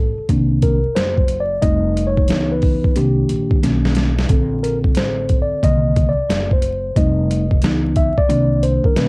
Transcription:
0.00 0.16 A1 loud
0.00 0.26 A4 medium
0.18 muted upright bass stroke soft
0.29 0.82 C2 loud
0.29 0.78 D#3 medium
0.29 0.78 A#3 medium
0.29 0.79 D4 medium
0.29 kick medium
0.29 closed hi-hat medium
0.62 0.97 A#4 medium
0.62 kick medium
0.62 closed hi-hat medium
0.85 muted upright bass stroke soft
0.95 1.60 F#1 loud
0.95 1.42 C5 loud
0.95 snare loud
0.95 closed hi-hat medium
1.17 kick medium
1.28 closed hi-hat medium
1.40 1.63 D5 medium
1.61 2.26 F1 loud
1.61 2.25 G3 soft
1.61 2.26 A3 soft
1.61 2.26 D#4 medium
1.61 2.08 D#5 loud
1.61 kick loud
1.61 closed hi-hat medium
1.97 closed hi-hat medium
2.07 2.53 C#5 medium
2.17 kick medium
2.28 2.82 C#2 medium
2.28 2.92 E3 medium
2.28 2.93 B3 soft
2.28 2.93 D#4 medium
2.28 snare loud
2.28 closed hi-hat medium
2.52 2.98 B4 medium
2.62 kick medium
2.62 open hi-hat soft
2.84 muted upright bass stroke soft
2.84 kick medium
2.96 3.28 C2 loud
2.96 3.59 D#3 medium
2.96 3.60 A#3 soft
2.96 3.60 D4 medium
2.96 3.59 G4 medium
2.96 closed hi-hat medium
3.29 3.61 A#1 medium
3.29 closed hi-hat medium
3.51 kick medium
3.62 4.26 B1 loud
3.62 4.11 D#3 soft
3.62 4.11 A#3 soft
3.62 4.11 C#4 medium
3.62 snare soft
3.62 closed hi-hat medium
3.85 snare medium
3.95 snare medium
3.95 closed hi-hat medium
4.19 snare medium
4.29 4.93 A#1 loud
4.29 5.59 D3 soft
4.29 5.59 C4 medium
4.29 5.59 A4 medium
4.29 kick loud
4.29 closed hi-hat medium
4.63 4.78 A#4 medium
4.63 closed hi-hat medium
4.84 kick medium
4.95 5.49 A1 medium
4.95 5.38 C5 medium
4.95 snare loud
4.95 closed hi-hat medium
5.29 kick medium
5.29 closed hi-hat medium
5.42 5.64 D5 medium
5.51 muted upright bass stroke soft
5.62 6.16 C2 medium
5.62 6.12 D3 medium
5.62 6.11 D#3 medium
5.62 6.11 A#3 medium
5.62 6.09 D#5 loud
5.62 kick medium
5.62 closed hi-hat medium
5.96 kick loud
5.96 closed hi-hat medium
6.09 6.49 D5 loud
6.18 muted upright bass stroke soft
6.29 6.93 F#1 medium
6.29 snare loud
6.29 closed hi-hat medium
6.51 6.98 C5 medium
6.51 kick medium
6.62 closed hi-hat medium
6.96 7.60 F1 medium
6.96 7.44 G3 medium
6.96 7.45 A3 medium
6.96 7.45 D#4 medium
6.96 7.59 D#5 medium
6.96 kick loud
6.96 closed hi-hat medium
7.31 closed hi-hat medium
7.51 kick medium
7.62 8.15 C#2 medium
7.62 8.11 E3 medium
7.62 8.11 B3 medium
7.62 8.12 D#4 medium
7.62 snare loud
7.62 closed hi-hat medium
7.96 8.19 E5 medium
7.96 kick medium
7.96 closed hi-hat medium
8.18 8.64 D5 loud
8.18 muted upright bass stroke soft
8.18 kick medium
8.28 8.82 C2 loud
8.28 8.92 D#3 medium
8.28 8.93 A#3 medium
8.28 8.93 D4 medium
8.28 closed hi-hat medium
8.63 8.86 C5 medium
8.63 closed hi-hat medium
8.84 8.97 A#4 medium
8.84 muted upright bass stroke soft
8.84 kick medium
8.96 9.08 B1 medium
8.96 9.08 D#3 medium
8.96 9.08 A#3 medium
8.96 9.08 C#4 medium
8.96 9.08 B4 medium
8.96 snare loud
8.96 closed hi-hat medium

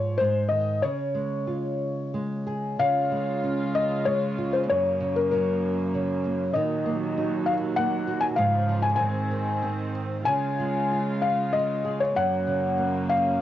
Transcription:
0.00 0.15 G#2 medium
0.00 0.17 F3 medium
0.00 0.17 F4 soft
0.00 0.20 C#5 medium
0.17 0.81 G#2 medium
0.17 0.51 C5 medium
0.48 0.82 D#3 soft
0.48 0.82 D#5 medium
0.82 2.75 C#3 medium
0.82 2.42 C#5 medium
1.14 2.13 G#3 soft
1.47 2.75 F4 soft
2.14 2.77 G#3 soft
2.46 2.78 G#4 soft
2.79 6.52 C#3 medium
2.79 4.66 C#3 medium
2.79 4.67 G#3 medium
2.79 4.68 F4 medium
2.79 3.78 F5 medium
3.12 4.05 G#3 soft
3.44 4.66 C#4 soft
3.75 4.07 D#5 medium
4.05 4.67 G#3 soft
4.05 4.50 C#5 medium
4.38 4.69 F4 soft
4.53 4.58 C5 medium
4.68 6.53 F#2 medium
4.68 6.52 F#2 medium
4.68 6.53 A#3 medium
4.68 5.18 C#5 medium
5.00 5.93 C#3 soft
5.16 5.30 A#4 medium
5.31 6.52 F#3 soft
5.31 6.20 A#4 medium
5.95 6.54 C#3 soft
6.26 6.55 A#3 soft
6.54 8.37 D#2 medium
6.54 8.37 A#2 medium
6.54 8.34 D#3 medium
6.54 8.37 F#3 medium
6.54 7.49 D#5 medium
6.86 7.77 A#3 medium
7.18 8.35 D#4 medium
7.46 7.53 F5 medium
7.76 8.37 A#3 medium
7.76 8.24 F#5 medium
8.07 8.37 F#4 soft
8.21 8.26 G#5 medium
8.36 8.98 G#2 medium
8.36 8.96 G#2 medium
8.36 8.98 C#3 medium
8.36 8.99 F3 medium
8.36 8.85 F5 medium
8.69 8.99 F3 soft
8.82 8.94 G#5 medium
8.96 10.25 G#2 medium
8.96 10.23 G#2 medium
8.96 10.25 D#3 medium
8.96 10.25 C4 medium
8.96 9.89 G#5 medium
9.31 10.25 D#3 soft
9.62 10.25 C4 soft
10.25 12.13 C#3 medium
10.25 12.12 C#3 medium
10.25 12.14 G#3 medium
10.25 12.13 F4 medium
10.25 11.25 G#5 medium
10.60 11.52 G#3 soft
10.92 12.13 F4 soft
11.22 11.55 F5 medium
11.53 12.14 G#3 soft
11.53 12.01 D#5 medium
11.85 12.15 G#4 soft
12.00 12.15 C#5 medium
12.16 13.41 F#2 medium
12.16 13.41 C#3 medium
12.16 13.41 A#3 medium
12.16 13.12 F#5 medium
12.47 13.39 C#3 soft
12.78 13.41 A#3 soft
13.10 13.41 F5 medium

